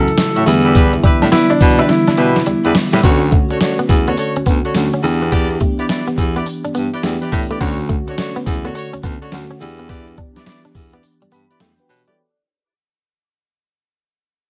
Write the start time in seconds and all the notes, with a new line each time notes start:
Already playing: F#2 C#3 E3 F#3 A3 E4 A4
0.08 closed hi-hat
0.18 A2, snare, closed hi-hat, tambourine
0.36 A2 C#4 E4 F#4 A4, closed hi-hat
0.46 E2 D3 E3 G3 A3 B3 E4, open hi-hat, tambourine
0.65 D4 E4 G4 B4, closed hi-hat
0.75 D4 E4 G4 B4, kick, closed hi-hat, tambourine
0.93 muted clean electric guitar stroke, closed hi-hat
1.03 G3 D4 E4 G4 B4, kick, closed hi-hat
1.22 A2 D4, snare, closed hi-hat
1.32 B3 D4 E4 G4 B4, snare, closed hi-hat, tambourine
1.50 B2 D4, muted clean electric guitar stroke, closed hi-hat
1.61 B2, kick, open hi-hat, tambourine
1.79 D4 E4 G4 B4, closed hi-hat
1.88 D3 E3 G3 B3 E4, muted clean electric guitar stroke, snare, closed hi-hat
2.08 D4, snare, closed hi-hat
2.17 B2 B3 D4 E4 G4 B4, closed hi-hat
2.36 snare, closed hi-hat
2.46 E2 G3, closed hi-hat
2.64 E2 D4 E4 G4 B4, muted clean electric guitar stroke, closed hi-hat
2.75 snare, open hi-hat
2.93 A2 G3 D4 E4 G4 B4, snare, closed hi-hat
3.03 D2 D3 A3 B3 C#4 D4 F#4 A4 C#5, kick, closed hi-hat, tambourine
3.22 closed hi-hat
3.32 A3, kick, closed hi-hat
3.50 D4 F#4 A4 C#5, muted clean electric guitar stroke, closed hi-hat
3.60 D4 F#4 A4 C#5, snare, closed hi-hat, tambourine
3.79 B3, closed hi-hat
3.89 E2, muted clean electric guitar stroke, kick, closed hi-hat, tambourine
4.07 B3 D4 F#4 A4 C#5, closed hi-hat
4.17 D4 F#4 A4 C#5, muted clean electric guitar stroke, closed hi-hat, tambourine
4.36 D2 C#4, closed hi-hat
4.46 D2 B3, kick, closed hi-hat, tambourine
4.64 D4 F#4 A4 C#5, closed hi-hat
4.75 D2 D3 A3 C#4 F#4, snare, closed hi-hat, tambourine
4.93 C#4, closed hi-hat
5.03 E2 E3 B3 D4 G4, muted clean electric guitar stroke, open hi-hat, tambourine
5.22 B3, closed hi-hat
5.32 B3 E4 G4 B4 D5, kick, closed hi-hat, tambourine
5.50 closed hi-hat
5.61 A3, kick, closed hi-hat
5.79 E4 G4 B4 D5, muted clean electric guitar stroke, closed hi-hat
5.89 E4 G4 B4 D5, snare, closed hi-hat, tambourine
6.08 B3, closed hi-hat
6.18 E2, muted clean electric guitar stroke, kick, closed hi-hat, tambourine
6.36 B3 E4 G4 B4 D5, closed hi-hat
6.46 muted clean electric guitar stroke, closed hi-hat, tambourine
6.65 G2 D4, closed hi-hat
6.75 G2 B3, closed hi-hat, tambourine
6.93 E4 G4 B4 D5, closed hi-hat
7.03 E2 E3 A3 B3 D4 G4, snare, closed hi-hat, tambourine
7.22 E4 G4 B4 D5, closed hi-hat
7.32 A2, muted clean electric guitar stroke, kick, open hi-hat, tambourine
7.50 A3 E4 G4 B4 D5, closed hi-hat
7.61 D2 D3 A3 B3 C#4 D4 F#4 A4 C#5, kick, closed hi-hat, tambourine
7.79 closed hi-hat
7.89 A3, kick, closed hi-hat
8.07 D4 F#4 A4 C#5, muted clean electric guitar stroke, closed hi-hat
8.18 D4 F#4 A4 C#5, snare, closed hi-hat, tambourine
8.36 B3, closed hi-hat
8.46 E2, muted clean electric guitar stroke, kick, closed hi-hat, tambourine
8.64 B3 D4 F#4 A4 C#5, closed hi-hat
8.75 D4 F#4 A4 C#5, muted clean electric guitar stroke, closed hi-hat, tambourine
8.93 D2 C#4, closed hi-hat
9.03 D2 B3, kick, closed hi-hat, tambourine
9.22 D4 F#4 A4 C#5, closed hi-hat
9.32 D2 D3 A3 C#4 F#4, snare, closed hi-hat, tambourine
9.51 C#4, closed hi-hat
9.61 E2 E3 B3 D4 G4, muted clean electric guitar stroke, open hi-hat, tambourine
9.79 B3, closed hi-hat
9.89 B3 E4 G4 B4 D5, kick, closed hi-hat, tambourine
10.08 closed hi-hat
10.18 D4, kick, closed hi-hat
10.36 E4 G4 B4 D5, muted clean electric guitar stroke, snare, closed hi-hat
10.46 E4 G4 B4 D5, snare, closed hi-hat, tambourine
10.65 D4, closed hi-hat
10.75 E2, muted clean electric guitar stroke, kick, open hi-hat, tambourine
10.93 B3 E4 G4 B4 D5, closed hi-hat
11.03 muted clean electric guitar stroke, closed hi-hat, tambourine
11.22 G2 G3, closed hi-hat
11.32 G2 B3 B5, closed hi-hat, tambourine
11.50 E4 G4 B4 D5, closed hi-hat
11.60 E2 A3 G5, snare, closed hi-hat, tambourine
11.79 F#4 B4, closed hi-hat
11.89 B2 G4 C#5, muted clean electric guitar stroke, open hi-hat, tambourine
12.07 G3 E4 G4 A4 B4 D5, closed hi-hat